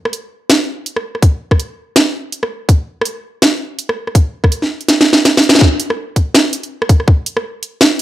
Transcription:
0.05 cross-stick
0.13 closed hi-hat
0.50 snare, closed hi-hat
0.86 closed hi-hat
0.96 cross-stick
1.15 cross-stick
1.22 kick, closed hi-hat
1.51 kick, cross-stick
1.60 closed hi-hat
1.96 snare, closed hi-hat
2.32 closed hi-hat
2.43 cross-stick
2.69 kick, closed hi-hat
3.01 cross-stick, closed hi-hat
3.42 snare, closed hi-hat
3.79 closed hi-hat
3.89 cross-stick
4.07 cross-stick
4.15 kick, closed hi-hat
4.44 kick, cross-stick
4.52 closed hi-hat
4.62 snare
4.81 closed hi-hat
4.88 snare, closed hi-hat
5.01 snare
5.13 snare
5.25 snare, closed hi-hat
5.37 snare
5.43 closed hi-hat
5.49 snare
5.55 snare
5.59 kick, snare
5.63 snare
5.80 closed hi-hat
5.90 cross-stick
6.16 kick, closed hi-hat
6.35 snare
6.53 closed hi-hat
6.63 closed hi-hat
6.82 cross-stick
6.89 kick, closed hi-hat
7.00 cross-stick
7.08 kick
7.26 closed hi-hat
7.37 cross-stick
7.63 closed hi-hat
7.81 snare

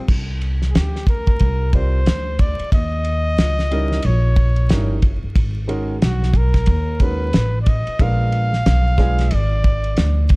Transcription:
0.08 C2, kick, crash
0.41 ride
0.62 snare
0.70 G#4
0.75 D2 G4, snare, hi-hat pedal, ride
0.96 snare
1.07 A#4, kick, ride
1.27 kick
1.39 C2, kick, ride
1.73 G3 C4 F4 A#4 C5 D5, kick, ride
2.06 D2, snare, hi-hat pedal, ride
2.39 D5, kick, ride
2.59 muted upright bass stroke, ride
2.72 D#2 D#5, kick, ride
3.05 ride
3.38 C#2, snare, hi-hat pedal, ride
3.59 snare
3.71 G3 C#4 D#4 E4 A#4, ride
3.92 snare
4.02 A#1 C#5, ride
4.36 kick, ride
4.56 ride
4.69 G1 G3 C#4 D#4 E4 A#4, snare, hi-hat pedal, ride
5.02 kick, ride
5.24 muted upright bass stroke
5.36 G#1, kick, ride
5.67 D#3 G#3 C#4 F#4 A#4, ride
6.02 B1 F#4, snare, hi-hat pedal, ride
6.23 snare
6.34 A#4, kick, ride
6.54 kick, snare, ride
6.66 D#2, kick, ride
7.00 D#3 G#3 C#4 F#4 A#4 B4, kick, ride
7.33 A1, snare, hi-hat pedal, ride
7.61 D5
7.66 D#5, kick, ride
7.87 muted upright bass stroke, ride
7.99 A#1 G#3 B3 D4 F4 A#4 F5, kick, ride
8.32 ride
8.53 snare
8.66 B1, snare, hi-hat pedal, ride
8.98 G#3 B3 D4 F4 G#4, kick, snare, ride
9.18 snare, ride
9.31 G#1 D5, ride
9.64 kick, ride
9.84 ride
9.97 D2, snare, hi-hat pedal, ride
10.29 kick, ride

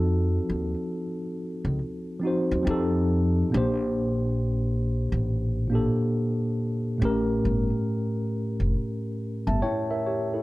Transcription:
Already playing: F2 F3 C4 D#4 F#4 A4
0.49 D#2
1.65 C#2
2.20 F3 C4 D#4
2.25 F#4 C5
2.51 D#2
2.63 F2 F3 C4 D#4
2.68 G4 A4
3.50 A#2 A#3 D4
3.54 A#1 G4 C5
5.12 A1
5.67 A#2 A#3 D4
5.73 G4 A4
6.98 A1 A2 A3 C#4
7.04 G4 A#4
7.45 G1
8.60 F1
9.47 G1 E5 A5
9.62 E4 C#5 G5
9.91 A#4 E5
10.06 G4 C#5
10.34 E4 A4

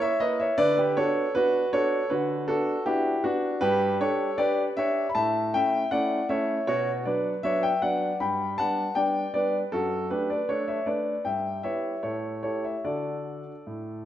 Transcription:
Already playing: E4
0.02 C#5 E5
0.20 A#3 E4 B4 D#5
0.40 C#5 E5
0.58 D3 B4 D5
0.77 G4 B4
0.97 B3 D4 F#4 A4 C#5
1.35 B3 D4 F#4 B4
1.73 B3 D4 F#4 A4 C#5
2.10 D3 F#4 B4
2.48 B3 D4 F#4 A4
2.86 B3 D4 E4 F#4 G4
3.24 B3 D4 F#4
3.61 G2 G4 B4
4.00 D4 G4 A4 C#5
4.38 D4 G4 B4 D5
4.77 D4 G4 C#5 E5
5.09 B5
5.15 A2 E5 A5
5.54 A3 C#4 E4 E5 G5
5.91 A3 C#4 E4 D5 F#5
6.29 A3 C#4 E4 C#5 E5
6.67 B2 F#4 C#5
7.05 F#3 B3 D4 B4 D5
7.43 F#3 B3 D4 C#5 E5
7.63 E5 G5
7.82 F#3 B3 D4 D5 F#5
8.20 G2 G5 B5
8.58 G3 B3 D4 F#5 A5
8.95 G3 B3 D4 D5 G5
9.34 G3 B3 D4 B4 D5
9.72 F#2 F#4 A4
10.10 A3 D4 G4 B4
10.30 B4 D5
10.49 A3 D4 A4 C#5
10.68 C#5 E5
10.86 A3 D4 B4 D5
11.25 G2 E5 G5
11.63 B3 E4 G4 C#5 E5
12.03 A2 A4 C#5
12.43 A3 E4 G4 A4 C#5
12.64 C#5 E5
12.84 D3 D4 F#4 A4 D5
13.67 A2

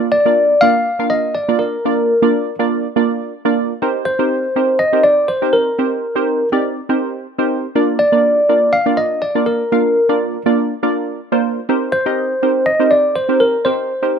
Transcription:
Already playing: A#3 D4 F4 A#4 D5
0.12 D5
0.25 A#3 D4 F4 A#4 D5
0.61 A#3 D4 F4 A#4 D5 F5
0.99 A#3 D4 F4 A#4 F5
1.10 D#5
1.35 D5
1.48 A#3 D4 F4 A#4 D5
1.59 A#4
1.85 A#3 D4 F4 A#4 D5
2.22 A#3 D4 F4 A#4 D5
2.59 A#3 D4 F4 A#4 D5
2.96 A#3 D4 F4 A#4 D5
3.45 A#3 D4 F4 A#4 D5
3.82 C4 D#4 G4 A#4 C5
4.05 C5
4.19 C4 D#4 G4 A#4 C5
4.56 C4 D#4 G4 A#4 C5
4.79 D#5
4.93 C4 D#4 G4 A#4 C5
5.04 D5
5.28 C5
5.42 C4 D#4 G4 A#4 C5
5.53 A#4
5.79 C4 D#4 G4 A#4 C5
6.15 C4 D#4 G4 A#4 C5
6.52 C4 D#4 G4 A#4 D5
6.89 C4 D#4 G4 A#4 C5
7.38 C4 D#4 G4 A#4 C5
7.75 A#3 D4 F4 A#4 D5
7.99 D5
8.12 A#3 D4 F4 A#4 D5
8.49 A#3 D4 F4 A#4 D5
8.73 F5
8.86 A#3 D4 F4 A#4 D5
8.97 D#5
9.22 D5
9.35 A#3 D4 F4 A#4 D5
9.46 A#4
9.72 A#3 D4 F4 A#4 F5
10.09 A#3 D4 F4 A#4 D5
10.46 A#3 D4 F4 A#4 D5
10.83 A#3 D4 F4 A#4 D5
11.32 A#3 D4 F4 A#4 C5
11.69 C4 D#4 G4 A#4 C5
11.92 C5
12.06 C4 D#4 G4 A#4 D#5
12.43 C4 D#4 G4 A#4 C5
12.66 D#5
12.80 C4 D#4 G4 A#4 C5
12.91 D5
13.16 C5
13.29 C4 D#4 G4 A#4 C5
13.40 A#4
13.65 C4 D#4 G4 A#4 C5
14.02 C4 D#4 G4 A#4 C5

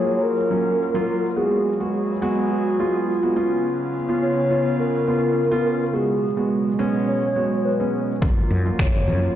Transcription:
Already playing: F#3 A#3 F4 G#4 C#5
0.23 A#4
0.50 F#3 A#3 C#4
0.94 F#3 A#3 F4
1.36 F#3 G#3 B3 F#4 G#4
1.80 G#3 B3 F#4
2.22 G#3 B3 F#4
2.51 F#4
2.79 G#3 B3 F4
3.08 F4
3.23 G#3 B3 F#4
3.36 C#3 B3 C#4 F4
4.09 B3 C#4 F4
4.22 C#5
4.50 B3 C#4 F4
4.79 A#4
5.08 B3 C#4 F4
5.51 B3 C#4 F4
5.93 B2 F#3 G#3 B3 F#4 G#4
6.37 G#3 B3 F#4
6.79 G#3 B3 C#4
7.08 C#5
7.36 G#3 B3 F#4
7.65 B4
7.80 G#3 B3 C#4
8.21 F#1 F#3 A#3 F4, kick
8.50 F#2
8.65 F#3 A#3 F4
8.79 F#1 C#5, finger snap, kick
9.07 F#2 F#3 A#3 F4

